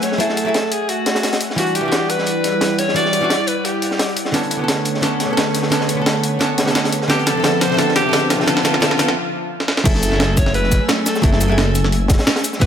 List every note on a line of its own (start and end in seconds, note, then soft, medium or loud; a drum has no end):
0.00 0.16 F#3 medium
0.00 0.18 A3 medium
0.00 1.38 A3 medium
0.00 0.19 E4 medium
0.00 0.20 G#4 medium
0.00 0.21 C#5 medium
0.00 1.38 E5 medium
0.00 4.30 F#5 medium
0.00 1.38 G#5 medium
0.00 snare soft
0.00 closed hi-hat medium
0.12 snare medium
0.18 0.43 F#3 medium
0.18 0.44 A3 medium
0.18 0.45 E4 medium
0.18 0.45 G#4 medium
0.18 0.73 A4 medium
0.18 closed hi-hat medium
0.29 snare soft
0.37 closed hi-hat medium
0.45 0.57 F#3 medium
0.45 0.58 A3 medium
0.45 0.58 E4 medium
0.45 0.59 G#4 loud
0.54 snare loud
0.54 closed hi-hat medium
0.72 0.91 G#4 medium
0.72 closed hi-hat medium
0.89 1.41 F#4 medium
0.89 closed hi-hat medium
1.06 snare medium
1.06 closed hi-hat medium
1.15 snare medium
1.15 closed hi-hat medium
1.23 snare medium
1.23 closed hi-hat medium
1.33 snare medium
1.33 closed hi-hat medium
1.41 4.31 G3 medium
1.41 4.31 E4 medium
1.41 4.31 D5 medium
1.41 closed hi-hat medium
1.50 snare soft
1.56 1.80 E3 medium
1.56 1.82 G3 medium
1.56 1.82 D4 medium
1.56 1.77 F#4 medium
1.56 1.83 F#4 medium
1.56 closed hi-hat medium
1.66 closed hi-hat soft
1.75 2.11 G4 medium
1.75 closed hi-hat medium
1.81 2.92 E3 medium
1.81 2.93 G3 medium
1.85 2.94 D4 medium
1.85 2.96 F#4 medium
1.92 snare loud
1.92 closed hi-hat medium
2.10 2.80 B4 loud
2.10 closed hi-hat medium
2.18 snare soft
2.26 closed hi-hat medium
2.44 snare soft
2.44 closed hi-hat medium
2.61 snare loud
2.61 closed hi-hat medium
2.78 2.95 C#5 loud
2.78 snare soft
2.78 closed hi-hat medium
2.88 snare soft
2.94 3.19 E3 medium
2.94 3.20 G3 medium
2.94 3.20 D4 medium
2.94 3.21 F#4 loud
2.94 3.49 D5 loud
2.94 closed hi-hat medium
3.05 snare soft
3.13 closed hi-hat medium
3.21 3.33 E3 medium
3.21 3.34 G3 medium
3.21 3.34 D4 medium
3.21 3.35 F#4 loud
3.30 snare loud
3.30 closed hi-hat medium
3.47 3.66 B4 loud
3.47 closed hi-hat medium
3.65 4.17 G4 medium
3.65 closed hi-hat medium
3.82 closed hi-hat medium
3.91 snare soft
3.99 snare loud
3.99 closed hi-hat medium
4.09 closed hi-hat soft
4.16 closed hi-hat medium
4.25 snare medium
4.32 4.56 D3 medium
4.32 6.90 D3 medium
4.32 6.90 A3 medium
4.32 4.58 B3 medium
4.32 4.58 C#4 medium
4.32 4.59 A4 medium
4.32 6.90 B4 medium
4.32 6.90 C#5 medium
4.32 snare soft
4.32 closed hi-hat medium
4.43 closed hi-hat soft
4.51 closed hi-hat medium
4.57 5.00 D3 medium
4.57 5.01 B3 medium
4.61 5.02 C#4 medium
4.61 5.03 A4 medium
4.68 snare loud
4.68 snare soft
4.68 closed hi-hat medium
4.85 closed hi-hat medium
4.95 snare soft
5.01 5.25 D3 medium
5.01 5.27 B3 medium
5.01 5.27 C#4 medium
5.01 5.28 A4 medium
5.01 snare soft
5.01 closed hi-hat medium
5.20 snare soft
5.20 closed hi-hat medium
5.26 5.69 D3 medium
5.26 5.70 B3 medium
5.30 5.71 C#4 medium
5.30 5.72 A4 medium
5.37 snare medium
5.37 snare loud
5.37 closed hi-hat medium
5.54 snare soft
5.54 closed hi-hat medium
5.63 snare medium
5.70 5.93 D3 medium
5.70 5.96 B3 medium
5.70 5.96 C#4 medium
5.70 5.97 A4 medium
5.70 snare medium
5.70 closed hi-hat medium
5.81 snare soft
5.89 closed hi-hat medium
5.95 6.38 D3 medium
5.95 6.39 B3 medium
5.99 6.40 C#4 medium
5.99 6.41 A4 medium
6.06 snare medium
6.06 snare loud
6.06 closed hi-hat medium
6.23 closed hi-hat medium
6.39 6.62 D3 medium
6.39 6.65 B3 medium
6.39 6.65 C#4 medium
6.39 6.66 A4 medium
6.39 snare medium
6.39 closed hi-hat medium
6.58 snare loud
6.58 closed hi-hat medium
6.64 7.07 D3 medium
6.64 7.08 B3 medium
6.64 snare medium
6.64 closed hi-hat medium
6.68 7.09 C#4 medium
6.68 7.10 A4 medium
6.75 snare medium
6.75 closed hi-hat medium
6.85 snare medium
6.85 closed hi-hat medium
6.92 9.14 F3 medium
6.92 9.14 D4 medium
6.92 9.14 C5 medium
6.92 9.14 E5 medium
6.92 closed hi-hat medium
7.02 snare medium
7.08 7.31 D3 medium
7.08 7.34 B3 medium
7.08 7.34 C4 medium
7.08 7.28 G4 loud
7.08 7.35 A4 medium
7.08 snare medium
7.08 closed hi-hat medium
7.19 closed hi-hat soft
7.26 7.63 A4 loud
7.26 snare medium
7.26 closed hi-hat medium
7.26 closed hi-hat loud
7.33 7.41 D3 medium
7.33 7.37 B3 medium
7.37 7.43 C4 medium
7.37 7.45 A4 medium
7.42 7.66 D3 medium
7.42 7.68 B3 medium
7.42 7.69 C4 medium
7.42 7.69 A4 medium
7.42 snare loud
7.42 snare medium
7.42 closed hi-hat medium
7.61 7.80 C5 loud
7.61 snare medium
7.61 closed hi-hat medium
7.67 7.76 D3 medium
7.67 7.71 B3 medium
7.67 snare soft
7.72 7.78 C4 medium
7.72 7.79 A4 medium
7.77 8.01 D3 medium
7.77 8.03 B3 medium
7.77 8.03 C4 medium
7.77 7.95 A4 loud
7.77 8.04 A4 loud
7.77 snare medium
7.77 closed hi-hat medium
7.88 snare soft
7.95 8.32 G4 loud
7.95 snare soft
7.95 snare medium
7.95 closed hi-hat medium
8.02 8.10 D3 medium
8.02 8.06 B3 medium
8.06 8.12 C4 medium
8.06 8.14 A4 medium
8.11 8.35 D3 medium
8.11 8.37 B3 medium
8.11 8.38 C4 medium
8.11 8.38 A4 medium
8.11 snare medium
8.11 snare loud
8.11 closed hi-hat medium
8.30 9.68 F4 medium
8.30 snare medium
8.30 snare soft
8.30 closed hi-hat medium
8.36 8.45 D3 medium
8.36 8.40 B3 medium
8.36 snare medium
8.41 8.47 C4 medium
8.41 8.48 A4 medium
8.46 8.62 D3 medium
8.46 8.63 B3 medium
8.46 8.64 C4 medium
8.46 8.64 A4 loud
8.46 snare medium
8.46 closed hi-hat medium
8.56 snare soft
8.56 snare medium
8.63 8.79 D3 medium
8.63 8.80 B3 medium
8.63 8.81 C4 medium
8.63 8.82 A4 medium
8.63 snare loud
8.63 closed hi-hat loud
8.63 closed hi-hat medium
8.74 snare medium
8.80 8.96 D3 medium
8.80 8.98 B3 medium
8.80 8.98 C4 medium
8.80 8.99 A4 loud
8.80 snare medium
8.80 snare loud
8.80 closed hi-hat medium
8.91 snare medium
8.98 9.14 D3 medium
8.98 9.15 B3 medium
8.98 9.16 C4 medium
8.98 9.16 A4 loud
8.98 snare medium
8.98 closed hi-hat medium
9.08 snare medium
9.60 snare medium
9.68 snare medium
9.77 snare medium
9.84 10.11 F#1 loud
9.84 10.07 F#3 medium
9.84 10.10 A3 medium
9.84 12.42 A3 medium
9.84 10.10 E4 medium
9.84 10.11 G#4 medium
9.84 10.39 A4 medium
9.84 12.42 G#5 medium
9.84 12.42 E6 medium
9.84 kick loud
9.84 closed hi-hat medium
9.84 crash loud
9.95 snare soft
9.95 closed hi-hat soft
10.03 closed hi-hat medium
10.03 closed hi-hat loud
10.03 shaker medium
10.09 10.79 F#1 medium
10.09 11.20 F#3 medium
10.09 11.21 A3 medium
10.09 snare soft
10.13 11.22 E4 medium
10.13 11.23 G#4 medium
10.20 snare loud
10.20 closed hi-hat medium
10.37 10.54 C#5 loud
10.37 kick loud
10.37 snare soft
10.37 closed hi-hat medium
10.37 shaker medium
10.46 snare soft
10.54 10.87 B4 loud
10.54 closed hi-hat medium
10.64 snare soft
10.71 kick medium
10.71 snare soft
10.71 closed hi-hat medium
10.71 shaker medium
10.88 snare loud
10.88 closed hi-hat medium
11.06 11.22 A4 medium
11.06 snare soft
11.06 closed hi-hat medium
11.06 closed hi-hat loud
11.06 shaker medium
11.15 snare medium
11.15 shaker soft
11.22 11.48 F#1 loud
11.22 11.47 F#3 medium
11.22 11.47 A3 medium
11.22 11.48 E4 medium
11.22 11.49 G#4 loud
11.22 11.89 A4 medium
11.22 kick loud
11.22 closed hi-hat medium
11.32 snare soft
11.41 closed hi-hat medium
11.41 shaker medium
11.48 12.17 F#1 loud
11.48 11.61 F#3 medium
11.48 11.61 A3 medium
11.48 11.62 E4 medium
11.48 11.62 G#4 loud
11.58 snare loud
11.58 closed hi-hat medium
11.75 closed hi-hat medium
11.75 shaker medium
11.84 snare soft
11.92 closed hi-hat medium
12.08 kick loud
12.08 snare loud
12.08 closed hi-hat medium
12.08 shaker medium
12.18 snare loud
12.18 closed hi-hat medium
12.27 snare loud
12.27 closed hi-hat medium
12.36 snare loud
12.36 closed hi-hat medium
12.44 12.66 G3 medium
12.44 12.66 F#5 medium
12.44 12.66 B5 medium
12.44 closed hi-hat medium
12.44 closed hi-hat loud
12.44 shaker medium
12.53 snare medium
12.53 shaker soft
12.60 12.66 E1 loud
12.60 12.66 E3 medium
12.60 12.66 G3 medium
12.60 12.66 D4 medium
12.60 12.66 F#4 medium
12.60 12.66 B4 loud
12.60 kick loud
12.60 closed hi-hat medium